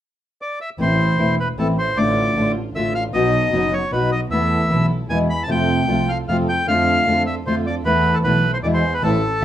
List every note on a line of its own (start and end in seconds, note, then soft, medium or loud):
0.42 0.59 D5 medium
0.61 0.70 E5 medium
0.78 1.17 A1 medium
0.78 1.17 E3 medium
0.78 1.18 A3 medium
0.78 1.17 A3 soft
0.78 1.18 C4 medium
0.78 1.17 C4 soft
0.78 1.17 E4 soft
0.78 1.19 E4 medium
0.78 1.35 C5 medium
1.18 1.56 E1 soft
1.18 1.35 E3 medium
1.18 1.56 A3 soft
1.18 1.36 A3 soft
1.18 1.56 C4 soft
1.18 1.36 C4 medium
1.18 1.56 E4 soft
1.18 1.36 E4 medium
1.40 1.48 B4 medium
1.58 1.95 A1 soft
1.58 1.75 E3 medium
1.58 1.75 A3 soft
1.58 1.95 A3 soft
1.58 1.95 C4 soft
1.58 1.75 C4 medium
1.58 1.96 E4 soft
1.58 1.76 E4 medium
1.58 1.68 A4 medium
1.78 1.98 C5 medium
1.96 2.35 A1 medium
1.96 2.35 D3 medium
1.96 2.35 A3 medium
1.96 2.34 A3 soft
1.96 2.34 D4 soft
1.96 2.36 D4 medium
1.96 2.35 F4 soft
1.96 2.36 F4 medium
1.96 2.52 D5 medium
2.36 2.73 A1 soft
2.36 2.53 D3 medium
2.36 2.53 A3 medium
2.36 2.74 A3 soft
2.36 2.74 D4 soft
2.36 2.54 D4 medium
2.36 2.74 F4 soft
2.36 2.54 F4 medium
2.75 3.12 A1 soft
2.75 2.92 D3 medium
2.75 3.12 A3 soft
2.75 2.93 A3 medium
2.75 3.12 D4 soft
2.75 2.93 D4 medium
2.75 3.12 F4 soft
2.75 2.93 F4 medium
2.75 2.94 E5 medium
2.95 3.04 F5 medium
3.13 3.51 B1 medium
3.13 3.51 B2 medium
3.13 3.51 F#3 medium
3.13 3.51 B3 soft
3.13 3.52 B3 medium
3.13 3.51 D#4 soft
3.13 3.52 D#4 medium
3.13 3.51 F#4 soft
3.13 3.52 F#4 medium
3.13 3.74 D#5 medium
3.52 3.90 F#1 soft
3.52 3.70 B2 soft
3.52 3.70 F#3 soft
3.52 3.90 B3 soft
3.52 3.70 B3 medium
3.52 3.90 D#4 soft
3.52 3.70 D#4 medium
3.52 3.90 F#4 soft
3.52 3.70 F#4 medium
3.73 3.91 C#5 medium
3.92 4.29 B1 soft
3.92 4.09 B2 soft
3.92 4.09 F#3 medium
3.92 4.29 B3 soft
3.92 4.09 B3 soft
3.92 4.29 D#4 soft
3.92 4.10 D#4 soft
3.92 4.30 F#4 soft
3.92 4.10 F#4 soft
3.92 4.11 B4 medium
4.12 4.21 D#5 medium
4.31 4.69 E2 medium
4.31 4.69 E3 medium
4.31 4.69 A3 medium
4.31 4.69 B3 soft
4.31 4.69 B3 medium
4.31 4.68 E4 soft
4.31 4.70 E4 medium
4.31 4.69 A4 soft
4.31 4.86 E5 medium
4.70 5.08 B1 soft
4.70 4.87 E3 medium
4.70 4.88 A3 medium
4.70 4.88 B3 soft
4.70 5.08 B3 soft
4.70 5.08 E4 soft
4.70 4.88 E4 medium
4.70 5.08 A4 soft
5.09 5.48 E2 soft
5.09 5.27 B2 soft
5.09 5.27 E3 soft
5.09 5.27 G#3 medium
5.09 5.48 B3 soft
5.09 5.28 B3 soft
5.09 5.48 E4 soft
5.09 5.28 E4 medium
5.09 5.48 G#4 soft
5.09 5.19 G#5 medium
5.30 5.43 B5 medium
5.43 5.50 A5 medium
5.48 5.87 F2 medium
5.48 5.87 C3 medium
5.48 5.87 F3 medium
5.48 5.88 A3 medium
5.48 5.87 C4 soft
5.48 5.88 C4 medium
5.48 5.87 F4 soft
5.48 5.88 F4 medium
5.48 5.87 A4 soft
5.48 6.11 G5 medium
5.88 6.27 C2 soft
5.88 6.06 C3 soft
5.88 6.06 F3 medium
5.88 6.06 A3 medium
5.88 6.26 C4 soft
5.88 6.06 C4 soft
5.88 6.27 F4 soft
5.88 6.06 F4 medium
5.88 6.27 A4 soft
6.09 6.18 F5 medium
6.28 6.66 F2 soft
6.28 6.46 C3 soft
6.28 6.46 F3 medium
6.28 6.46 A3 soft
6.28 6.65 C4 soft
6.28 6.46 C4 medium
6.28 6.66 F4 soft
6.28 6.46 F4 medium
6.28 6.66 A4 soft
6.28 6.37 F5 medium
6.49 6.67 G5 medium
6.67 7.05 F2 medium
6.67 7.05 D3 medium
6.67 7.06 A3 medium
6.67 7.05 D4 soft
6.67 7.06 D4 medium
6.67 7.05 F4 soft
6.67 7.06 F4 medium
6.67 7.05 A4 soft
6.67 7.23 F5 medium
7.06 7.44 F2 soft
7.06 7.24 D3 medium
7.06 7.24 A3 medium
7.06 7.44 D4 soft
7.06 7.24 D4 medium
7.06 7.44 F4 soft
7.06 7.24 F4 medium
7.06 7.44 A4 soft
7.26 7.35 E5 medium
7.46 7.83 F2 soft
7.46 7.63 D3 soft
7.46 7.64 A3 medium
7.46 7.83 D4 soft
7.46 7.64 D4 medium
7.46 7.83 F4 soft
7.46 7.64 F4 medium
7.46 7.84 A4 soft
7.46 7.55 C5 medium
7.67 7.75 D5 medium
7.85 8.22 E2 medium
7.85 8.23 E3 medium
7.85 8.24 A3 medium
7.85 8.22 B3 soft
7.85 8.24 B3 medium
7.85 8.23 E4 soft
7.85 8.25 E4 medium
7.85 8.23 A4 medium
7.85 8.15 B4 medium
8.14 8.18 A4 medium
8.24 8.61 B1 soft
8.24 8.41 E3 medium
8.24 8.42 A3 medium
8.24 8.62 B3 soft
8.24 8.42 B3 medium
8.24 8.62 E4 soft
8.24 8.42 E4 medium
8.24 8.62 A4 soft
8.24 8.51 B4 medium
8.53 8.58 C5 medium
8.63 9.01 E2 soft
8.63 8.80 B2 medium
8.63 8.81 E3 medium
8.63 8.81 G#3 medium
8.63 9.01 B3 soft
8.63 8.81 B3 medium
8.63 9.01 E4 soft
8.63 8.81 E4 medium
8.63 9.01 G#4 soft
8.63 8.68 D5 medium
8.74 8.94 C5 medium
8.94 9.03 B4 medium
9.02 9.18 A1 medium
9.02 9.15 E3 medium
9.02 9.15 A3 medium
9.02 9.15 C4 medium
9.02 9.16 C4 medium
9.02 9.16 E4 medium
9.02 9.15 A4 medium
9.02 9.45 A4 medium